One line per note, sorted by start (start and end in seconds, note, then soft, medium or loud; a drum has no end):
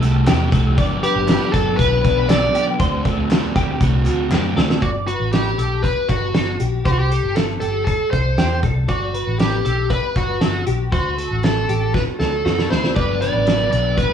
0.00 0.24 C2 medium
0.00 0.27 A3 medium
0.00 0.27 E4 medium
0.00 0.24 A4 medium
0.00 closed hi-hat medium
0.05 0.26 G3 soft
0.27 0.49 E2 medium
0.27 0.52 C3 medium
0.27 0.53 G3 medium
0.27 0.52 A3 medium
0.27 0.50 E4 medium
0.27 0.53 G4 medium
0.27 snare loud
0.27 clap loud
0.27 closed hi-hat medium
0.51 0.74 C2 medium
0.51 0.78 G3 soft
0.51 0.78 A3 medium
0.51 0.77 E4 medium
0.51 0.77 A4 medium
0.51 kick medium
0.51 closed hi-hat medium
0.77 0.99 G1 loud
0.77 1.03 G2 medium
0.77 1.03 D3 medium
0.77 1.03 F#3 medium
0.77 1.03 B3 medium
0.77 1.01 D4 loud
0.77 1.03 D5 loud
0.77 kick loud
0.77 closed hi-hat medium
1.02 1.28 F#3 soft
1.02 1.28 B3 soft
1.02 1.28 D4 medium
1.02 1.55 G4 medium
1.02 1.50 B4 medium
1.02 closed hi-hat medium
1.16 1.37 G1 loud
1.27 1.53 G2 medium
1.27 1.53 D3 medium
1.27 1.54 F#3 medium
1.27 1.53 B3 medium
1.27 1.52 D4 medium
1.27 snare loud
1.27 clap medium
1.27 closed hi-hat medium
1.52 1.75 G1 medium
1.52 1.79 B3 soft
1.52 1.78 D4 medium
1.52 1.77 A4 medium
1.52 1.78 A4 medium
1.52 kick medium
1.52 closed hi-hat medium
1.56 1.78 F#3 soft
1.77 2.00 B1 loud
1.77 2.04 D3 medium
1.77 2.04 F#3 medium
1.77 2.04 B3 medium
1.77 2.30 B4 loud
1.77 2.26 B4 medium
1.77 kick medium
1.77 closed hi-hat medium
1.82 2.02 D4 medium
2.03 2.47 B1 medium
2.03 2.29 F#3 soft
2.03 2.29 B3 soft
2.03 2.29 D4 medium
2.03 kick medium
2.03 closed hi-hat medium
2.29 2.54 G2 medium
2.29 2.55 D3 medium
2.29 2.55 F#3 medium
2.29 2.55 B3 medium
2.29 2.53 D4 medium
2.29 2.55 A4 medium
2.29 2.64 D5 loud
2.29 snare loud
2.29 clap loud
2.29 closed hi-hat medium
2.54 2.80 F#3 soft
2.54 2.81 B3 soft
2.54 2.80 D4 medium
2.54 2.80 G4 medium
2.54 closed hi-hat medium
2.80 3.01 D2 loud
2.80 3.05 D3 medium
2.80 3.06 A3 medium
2.80 3.05 C4 medium
2.80 3.03 F#4 medium
2.80 3.05 C5 loud
2.80 kick loud
2.80 closed hi-hat medium
3.05 3.30 A3 soft
3.05 3.31 C4 medium
3.05 3.30 F#4 medium
3.05 3.53 A4 medium
3.05 kick medium
3.05 closed hi-hat medium
3.17 3.39 D2 loud
3.30 3.56 D3 medium
3.30 3.56 A3 medium
3.30 3.56 C4 medium
3.30 3.54 F#4 loud
3.30 snare loud
3.30 clap medium
3.30 closed hi-hat medium
3.55 3.77 D2 medium
3.55 3.81 A3 soft
3.55 3.82 C4 medium
3.55 3.81 F#4 medium
3.55 3.81 G4 medium
3.55 kick medium
3.55 closed hi-hat medium
3.81 4.03 C2 medium
3.81 4.06 D3 medium
3.81 4.07 A3 medium
3.81 4.07 C4 medium
3.81 4.32 F#4 medium
3.81 4.05 F#4 medium
3.81 kick medium
3.81 closed hi-hat medium
4.06 4.28 D2 medium
4.06 4.32 A3 soft
4.06 4.33 C4 medium
4.06 4.32 F#4 medium
4.06 clap medium
4.06 closed hi-hat medium
4.31 4.53 F#2 medium
4.31 4.57 D3 medium
4.31 4.58 A3 medium
4.31 4.58 C4 medium
4.31 4.56 F#4 medium
4.31 4.57 G4 medium
4.31 snare medium
4.31 clap loud
4.56 4.78 D2 medium
4.56 4.84 A3 soft
4.56 4.83 C4 soft
4.56 4.82 F#4 medium
4.56 4.82 A4 medium
4.56 snare medium
4.70 snare medium
4.82 5.15 G1 medium
4.82 4.89 F#4 medium
4.82 5.07 D5 medium
4.82 kick medium
4.82 closed hi-hat medium
5.07 5.32 F#4 medium
5.07 5.55 B4 medium
5.07 closed hi-hat medium
5.20 5.52 A1 medium
5.33 5.85 G4 medium
5.33 snare medium
5.33 closed hi-hat medium
5.58 5.91 B1 medium
5.58 5.84 A4 medium
5.58 closed hi-hat medium
5.82 6.09 B4 medium
5.82 6.31 B4 medium
5.82 kick medium
5.82 closed hi-hat medium
6.09 6.31 G1 medium
6.09 6.56 F#4 medium
6.09 kick medium
6.09 closed hi-hat medium
6.34 6.56 G1 medium
6.34 6.60 A4 medium
6.34 snare loud
6.34 closed hi-hat medium
6.60 6.82 B1 medium
6.60 6.85 G4 medium
6.60 closed hi-hat medium
6.85 7.18 C2 medium
6.85 6.92 G4 medium
6.85 7.11 C5 medium
6.85 kick medium
6.85 closed hi-hat medium
6.92 6.98 F#4 medium
6.99 7.37 G4 medium
7.11 7.62 A4 medium
7.11 closed hi-hat medium
7.24 7.56 G1 medium
7.35 7.42 A4 medium
7.35 snare loud
7.35 closed hi-hat medium
7.60 7.94 G1 medium
7.60 7.87 G4 medium
7.60 7.84 A4 medium
7.60 closed hi-hat medium
7.85 8.10 A4 medium
7.85 8.35 A4 medium
7.85 kick medium
7.85 closed hi-hat medium
8.11 8.34 C2 medium
8.11 8.59 C5 medium
8.11 kick medium
8.11 closed hi-hat medium
8.38 8.65 E2 medium
8.38 8.63 G4 medium
8.38 snare medium
8.38 closed hi-hat medium
8.63 8.85 C2 medium
8.63 8.89 A4 medium
8.63 kick medium
8.63 closed hi-hat medium
8.88 9.39 F#4 medium
8.88 9.14 D5 medium
8.88 kick medium
8.88 closed hi-hat medium
9.14 9.62 B4 medium
9.14 closed hi-hat medium
9.27 9.60 A1 medium
9.39 9.92 G4 medium
9.39 snare loud
9.39 closed hi-hat medium
9.65 9.98 B1 medium
9.65 9.90 A4 medium
9.65 closed hi-hat medium
9.90 10.38 B4 medium
9.90 10.17 B4 loud
9.90 kick medium
9.90 closed hi-hat medium
10.16 10.38 G1 medium
10.16 10.64 F#4 medium
10.16 kick medium
10.16 closed hi-hat medium
10.41 10.63 G1 medium
10.41 10.67 A4 medium
10.41 snare medium
10.41 closed hi-hat medium
10.67 10.89 B1 medium
10.67 10.92 G4 medium
10.67 closed hi-hat medium
10.92 11.25 D2 medium
10.92 11.45 F#4 medium
10.92 11.17 C5 medium
10.92 kick medium
10.92 closed hi-hat medium
11.17 11.65 A4 medium
11.17 closed hi-hat medium
11.31 11.63 A1 medium
11.43 11.94 A4 medium
11.43 snare loud
11.43 closed hi-hat medium
11.68 12.01 A1 medium
11.68 11.94 G4 medium
11.68 closed hi-hat medium
11.94 12.42 F#4 medium
11.94 12.01 B4 medium
11.94 kick medium
11.94 snare soft
12.19 12.41 D2 medium
12.19 12.70 A4 medium
12.19 snare medium
12.45 12.67 F#2 medium
12.45 12.70 F#4 medium
12.45 snare medium
12.58 snare medium
12.70 12.92 D2 medium
12.70 12.95 E4 medium
12.70 12.95 C5 medium
12.70 snare medium
12.84 snare medium
12.95 13.28 G1 medium
12.95 13.21 G2 medium
12.95 13.22 D3 medium
12.95 13.22 F#3 medium
12.95 13.21 B3 medium
12.95 13.19 D4 medium
12.95 13.22 B4 medium
12.95 13.21 D5 medium
12.95 kick medium
12.95 closed hi-hat medium
13.21 13.46 F#3 soft
13.21 13.47 B3 soft
13.21 13.46 D4 soft
13.21 13.72 B4 medium
13.21 13.71 D5 medium
13.21 closed hi-hat medium
13.34 13.67 A1 medium
13.46 13.72 D3 soft
13.46 13.73 F#3 soft
13.46 13.73 B3 medium
13.46 13.71 D4 medium
13.46 snare medium
13.46 closed hi-hat medium
13.72 14.05 B1 medium
13.72 13.97 F#3 soft
13.72 13.98 B3 soft
13.72 13.98 D4 soft
13.72 13.97 A4 medium
13.72 13.96 D5 medium
13.72 closed hi-hat medium
13.97 14.13 G2 medium
13.97 14.13 D3 medium
13.97 14.13 F#3 medium
13.97 14.13 B3 medium
13.97 14.13 D4 medium
13.97 14.13 B4 medium
13.97 kick medium
13.97 closed hi-hat medium